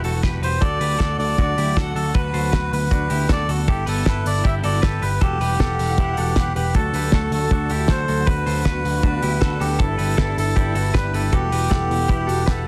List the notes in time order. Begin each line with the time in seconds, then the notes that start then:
Already playing: E3 G3 B3 F#4
0.04 E1 F#4 A4, open hi-hat
0.23 E1 G4 B4, kick, snare, closed hi-hat
0.42 E1 G4 B4 C5, open hi-hat
0.61 D2 D3 F#3 A3 F#4 A4 D5, kick, closed hi-hat
0.80 D2 G4 B4, open hi-hat
0.99 D2 F#4 A4, kick, snare, closed hi-hat
1.18 D2 D5, open hi-hat
1.38 D2 D4 F#4, kick, closed hi-hat
1.58 D2 E4 G4, open hi-hat
1.76 D2 F#4 A4 F#5, kick, snare, closed hi-hat
1.95 D2 F#4 A4, open hi-hat
2.15 D2 D3 B3 F#4 B4, kick, closed hi-hat
2.34 D2 A4 C5, open hi-hat
2.52 D2 F#4 B4, kick, snare, closed hi-hat
2.72 D2 B4, open hi-hat
2.91 D2 D4 F#4, kick, closed hi-hat
3.10 D2 E4 G4, open hi-hat
3.29 D2 F#4 A4 D5, kick, snare, closed hi-hat
3.49 D2 F#4 A4, open hi-hat
3.67 G1 G3 E4 G4 A4, kick, closed hi-hat
3.86 G1 G4 A4 B4, open hi-hat
4.05 E4 A4 B4, kick, snare
4.26 G1 D5, open hi-hat
4.44 G1 E4 G4 E5, kick, closed hi-hat
4.64 G1 F#4 A4 D5, open hi-hat
4.82 G4 A4 B4, kick, snare, closed hi-hat
5.02 G1 G4 B4, open hi-hat
5.21 E1 E3 F#4 G4 A4 F#5, kick, closed hi-hat
5.40 E1 G4 B4, open hi-hat
5.60 E1 A4 F#5, kick, snare
5.79 E1, open hi-hat
5.98 E1 E4 G4, kick, closed hi-hat
6.17 E1 F#4 A4, open hi-hat
6.36 G4 B4, kick, snare, closed hi-hat
6.55 E1 G4 B4, open hi-hat
6.74 D2 D3 F#3 A3 D4 F#4 A4, kick, closed hi-hat
6.93 D2 G4 B4, open hi-hat
7.12 D2 A3 D4 F#4 A4, kick, snare
7.31 D2 A4, open hi-hat
7.51 D2 A3 D4 F#4 A4, kick, closed hi-hat
7.70 D2 E4 G4, open hi-hat
7.88 D2 A3 D4 F#4 A4 C5, kick, snare, closed hi-hat
8.08 D2 F#4 A4, open hi-hat
8.26 D2 B3 D4 F#4 B4, kick, closed hi-hat
8.46 D2 A4 C5, open hi-hat
8.65 D2 B3 D4 F#4 B4, kick, snare, closed hi-hat
8.84 D2, open hi-hat
9.03 D2 B3 D4 F#4 B4, kick, closed hi-hat
9.22 D2 E4 G4, open hi-hat
9.41 D2 B3 D4 F#4 A4 B4, kick, snare, closed hi-hat
9.60 D2 F#4 G4 A4, open hi-hat
9.79 G1 G3 D4 E4 G4 A4 B4, kick, closed hi-hat
9.98 G1 G4 B4, open hi-hat
10.17 G1 D4 E4 G4 A4 B4, kick, snare
10.37 G1 A4, open hi-hat
10.56 G1 D4 E4 G4 B4, kick, closed hi-hat
10.75 G1 F#4 A4, open hi-hat
10.94 D4 E4 G4 B4, kick, snare, closed hi-hat
11.13 G1 G4 A4 B4, open hi-hat
11.33 E1 E3 B3 E4 F#4 G4 A4 B4 F#5, kick, closed hi-hat
11.51 E1 G4 B4, open hi-hat
11.70 E4 F#4 G4 A4 B4 F#5, kick, snare, closed hi-hat
11.89 E1, open hi-hat
12.08 E1 E4 F#4 G4 B4, kick, closed hi-hat
12.27 E1 F#4 A4, open hi-hat
12.46 E4 F#4 G4 A4 B4, kick, snare, closed hi-hat